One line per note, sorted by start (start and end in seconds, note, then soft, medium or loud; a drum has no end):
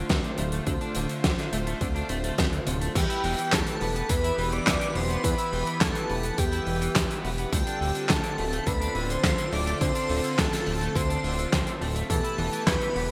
0.00 2.92 D3 medium
0.00 2.92 A3 medium
0.00 2.91 F4 medium
0.00 2.91 C5 medium
0.09 0.21 D2 loud
0.09 0.17 D3 medium
0.09 0.37 C4 medium
0.09 kick loud
0.09 snare loud
0.09 closed hi-hat medium
0.24 0.31 D3 medium
0.24 closed hi-hat soft
0.38 0.60 D1 loud
0.38 0.49 C3 medium
0.38 0.43 A3 medium
0.38 closed hi-hat medium
0.52 0.63 A3 medium
0.52 closed hi-hat medium
0.67 0.78 D2 loud
0.67 0.85 C3 loud
0.67 0.71 D3 medium
0.67 kick loud
0.67 closed hi-hat medium
0.81 0.92 D4 medium
0.81 closed hi-hat soft
0.95 1.07 D1 loud
0.95 1.06 D3 medium
0.95 1.14 D3 loud
0.95 closed hi-hat loud
1.09 1.20 D3 medium
1.09 closed hi-hat medium
1.24 1.35 D2 medium
1.24 1.31 D3 medium
1.24 1.51 F3 medium
1.24 kick loud
1.24 snare loud
1.24 closed hi-hat medium
1.38 1.45 D3 medium
1.38 snare soft
1.38 closed hi-hat soft
1.52 1.75 D1 medium
1.52 1.57 A3 medium
1.52 1.71 A3 medium
1.52 closed hi-hat loud
1.67 1.78 A3 medium
1.67 closed hi-hat medium
1.81 2.03 D2 medium
1.81 1.85 D3 loud
1.81 2.08 C4 medium
1.81 kick loud
1.81 closed hi-hat medium
1.95 2.06 D4 medium
1.95 closed hi-hat soft
2.09 2.32 D1 medium
2.09 2.17 A3 medium
2.09 2.28 C4 medium
2.09 closed hi-hat medium
2.24 2.35 A3 medium
2.24 closed hi-hat medium
2.38 2.60 D2 medium
2.38 2.45 A3 medium
2.38 2.49 C4 medium
2.38 kick loud
2.38 snare loud
2.38 closed hi-hat medium
2.52 2.57 D3 medium
2.52 closed hi-hat soft
2.67 2.89 D1 loud
2.67 2.94 C3 medium
2.67 2.74 D3 medium
2.67 closed hi-hat medium
2.81 2.92 A3 medium
2.81 closed hi-hat medium
2.95 3.06 E2 loud
2.95 3.00 E3 medium
2.95 7.49 E3 medium
2.95 7.49 B3 medium
2.95 3.54 G4 medium
2.95 7.49 G4 medium
2.95 7.49 B4 loud
2.95 3.54 G5 loud
2.95 kick loud
2.95 closed hi-hat loud
2.95 crash medium
2.95 cabasa medium
3.10 3.20 E4 loud
3.10 closed hi-hat medium
3.10 cabasa soft
3.24 3.35 E1 loud
3.24 3.35 E3 medium
3.24 open hi-hat medium
3.38 3.49 E3 medium
3.38 closed hi-hat medium
3.38 cabasa medium
3.52 3.64 E2 medium
3.52 3.60 E3 medium
3.52 4.11 A4 medium
3.52 4.11 A5 medium
3.52 kick loud
3.52 snare loud
3.52 clap medium
3.52 closed hi-hat medium
3.52 cabasa medium
3.67 3.74 E3 medium
3.67 closed hi-hat medium
3.67 cabasa soft
3.81 4.03 E1 medium
3.81 3.85 B3 medium
3.81 open hi-hat medium
3.95 4.06 B3 medium
3.95 closed hi-hat medium
3.95 cabasa medium
4.09 4.32 E2 medium
4.09 4.14 E3 loud
4.09 4.54 B4 loud
4.09 4.54 B5 loud
4.09 kick loud
4.09 closed hi-hat medium
4.09 cabasa medium
4.24 4.35 E4 loud
4.24 closed hi-hat medium
4.24 cabasa soft
4.38 4.60 E1 medium
4.38 4.49 E3 medium
4.38 open hi-hat medium
4.52 4.63 E3 medium
4.52 4.97 D5 loud
4.52 4.97 D6 loud
4.52 closed hi-hat medium
4.52 cabasa medium
4.67 4.78 E2 loud
4.67 4.74 E3 medium
4.67 kick loud
4.67 snare loud
4.67 clap loud
4.67 closed hi-hat loud
4.67 cabasa medium
4.81 4.88 E3 medium
4.81 closed hi-hat medium
4.81 cabasa soft
4.95 5.18 E1 loud
4.95 5.00 B3 medium
4.95 5.26 C5 loud
4.95 5.26 C6 loud
4.95 open hi-hat medium
5.10 5.20 B3 medium
5.10 closed hi-hat medium
5.10 cabasa medium
5.24 5.35 E2 loud
5.24 5.28 E3 loud
5.24 5.83 B4 loud
5.24 5.83 B5 loud
5.24 kick loud
5.24 closed hi-hat loud
5.24 cabasa medium
5.38 5.49 E4 loud
5.38 closed hi-hat medium
5.38 cabasa medium
5.52 5.64 E1 loud
5.52 5.63 E3 medium
5.52 open hi-hat medium
5.66 5.78 E3 medium
5.66 closed hi-hat medium
5.66 cabasa medium
5.81 5.92 E2 medium
5.81 5.88 E3 medium
5.81 6.40 A4 medium
5.81 6.40 A5 loud
5.81 kick loud
5.81 snare loud
5.81 clap medium
5.81 closed hi-hat loud
5.81 cabasa medium
5.95 6.03 E3 medium
5.95 closed hi-hat medium
5.95 cabasa soft
6.09 6.32 E1 medium
6.09 6.14 B3 medium
6.09 open hi-hat medium
6.23 6.35 B3 medium
6.23 closed hi-hat medium
6.23 cabasa medium
6.38 6.60 E2 medium
6.38 6.43 E3 loud
6.38 7.24 G4 medium
6.38 7.24 G5 medium
6.38 kick loud
6.38 closed hi-hat loud
6.38 cabasa medium
6.52 6.63 E4 loud
6.52 closed hi-hat medium
6.52 cabasa soft
6.66 6.89 E1 medium
6.66 6.78 E3 medium
6.66 open hi-hat medium
6.81 6.92 E3 medium
6.81 closed hi-hat medium
6.81 cabasa medium
6.95 7.06 E2 loud
6.95 7.02 E3 medium
6.95 kick loud
6.95 snare loud
6.95 clap loud
6.95 closed hi-hat loud
6.95 cabasa medium
7.10 7.17 E3 medium
7.10 closed hi-hat medium
7.10 cabasa soft
7.24 7.46 E1 medium
7.24 7.28 B3 medium
7.24 open hi-hat medium
7.38 7.49 B3 medium
7.38 closed hi-hat medium
7.38 cabasa medium
7.53 7.64 D2 loud
7.53 7.57 D3 loud
7.53 12.06 D3 medium
7.53 12.06 C4 medium
7.53 12.06 F4 medium
7.53 8.11 G4 medium
7.53 12.06 A4 loud
7.53 8.11 G5 loud
7.53 kick loud
7.53 closed hi-hat loud
7.53 cabasa medium
7.67 7.78 D4 loud
7.67 closed hi-hat medium
7.67 cabasa soft
7.81 7.92 D1 loud
7.81 7.92 D3 medium
7.81 open hi-hat medium
7.95 8.06 D3 medium
7.95 closed hi-hat medium
7.95 cabasa medium
8.09 8.21 D2 medium
8.09 8.17 D3 medium
8.09 8.68 A4 medium
8.09 8.68 A5 medium
8.09 kick loud
8.09 snare loud
8.09 clap loud
8.09 closed hi-hat loud
8.09 cabasa medium
8.24 8.31 D3 medium
8.24 closed hi-hat medium
8.24 cabasa soft
8.38 8.60 D1 medium
8.38 8.43 A3 medium
8.38 open hi-hat medium
8.52 8.63 A3 medium
8.52 closed hi-hat medium
8.52 cabasa medium
8.66 8.89 D2 medium
8.66 8.71 D3 loud
8.66 9.11 B4 loud
8.66 9.11 B5 loud
8.66 kick loud
8.66 closed hi-hat medium
8.66 cabasa medium
8.81 8.92 D4 loud
8.81 closed hi-hat medium
8.81 cabasa soft
8.95 9.18 D1 medium
8.95 9.06 D3 medium
8.95 open hi-hat medium
9.10 9.20 D3 medium
9.10 9.54 C5 loud
9.10 9.54 C6 loud
9.10 closed hi-hat medium
9.10 cabasa medium
9.24 9.35 D2 loud
9.24 9.31 D3 medium
9.24 kick loud
9.24 snare loud
9.24 clap medium
9.24 closed hi-hat loud
9.24 cabasa medium
9.38 9.45 D3 medium
9.38 closed hi-hat medium
9.38 cabasa soft
9.53 9.75 D1 medium
9.53 9.57 A3 medium
9.53 9.81 D5 loud
9.53 9.81 D6 loud
9.53 open hi-hat medium
9.67 9.78 A3 medium
9.67 closed hi-hat medium
9.67 cabasa medium
9.81 9.92 D2 loud
9.81 9.85 D3 loud
9.81 10.40 C5 loud
9.81 10.40 C6 loud
9.81 kick loud
9.81 closed hi-hat medium
9.81 cabasa medium
9.95 10.06 D4 medium
9.95 closed hi-hat medium
9.95 cabasa soft
10.09 10.21 D1 loud
10.09 10.21 D3 medium
10.09 open hi-hat medium
10.24 10.35 D3 medium
10.24 closed hi-hat medium
10.24 cabasa medium
10.38 10.49 D2 medium
10.38 10.45 D3 medium
10.38 10.97 A4 medium
10.38 10.97 A5 loud
10.38 kick loud
10.38 snare loud
10.38 clap medium
10.38 closed hi-hat medium
10.38 cabasa medium
10.53 10.60 D3 medium
10.53 snare soft
10.53 closed hi-hat medium
10.53 cabasa soft
10.66 10.89 D1 medium
10.66 10.71 A3 medium
10.66 open hi-hat medium
10.81 10.92 A3 medium
10.81 closed hi-hat medium
10.81 cabasa medium
10.95 11.18 D2 medium
10.95 11.00 D3 loud
10.95 11.81 C5 loud
10.95 11.81 C6 loud
10.95 kick loud
10.95 closed hi-hat medium
10.95 cabasa medium
11.10 11.20 D4 loud
11.10 closed hi-hat medium
11.10 cabasa soft
11.24 11.46 D1 medium
11.24 11.35 D3 medium
11.24 open hi-hat medium
11.38 11.49 D3 medium
11.38 closed hi-hat soft
11.38 cabasa medium
11.52 11.64 D2 loud
11.52 11.60 D3 medium
11.52 kick loud
11.52 snare loud
11.52 clap medium
11.52 closed hi-hat medium
11.52 cabasa medium
11.67 11.74 D3 medium
11.67 closed hi-hat medium
11.67 cabasa soft
11.81 12.03 D1 medium
11.81 11.85 A3 medium
11.81 open hi-hat medium
11.96 12.06 A3 medium
11.96 closed hi-hat medium
11.96 cabasa medium
12.10 12.21 E2 loud
12.10 12.28 B2 loud
12.10 13.11 E3 medium
12.10 12.14 E3 medium
12.10 13.11 B3 medium
12.10 13.11 G4 medium
12.10 12.68 A4 medium
12.10 13.11 B4 medium
12.10 12.68 A5 loud
12.10 kick loud
12.10 closed hi-hat loud
12.10 cabasa medium
12.24 12.35 E4 loud
12.24 closed hi-hat medium
12.24 cabasa medium
12.38 12.49 E1 loud
12.38 12.49 E3 medium
12.38 12.57 E3 loud
12.38 open hi-hat medium
12.53 12.63 E3 medium
12.53 closed hi-hat medium
12.53 cabasa medium
12.67 12.78 E2 medium
12.67 12.74 E3 medium
12.67 12.94 G3 medium
12.67 13.11 B4 loud
12.67 13.11 B5 loud
12.67 kick loud
12.67 snare loud
12.67 clap medium
12.67 closed hi-hat medium
12.67 cabasa medium
12.80 12.88 E3 medium
12.80 closed hi-hat medium
12.80 cabasa soft
12.96 13.11 E1 medium
12.96 13.00 B3 medium
12.96 13.11 B3 medium
12.96 open hi-hat medium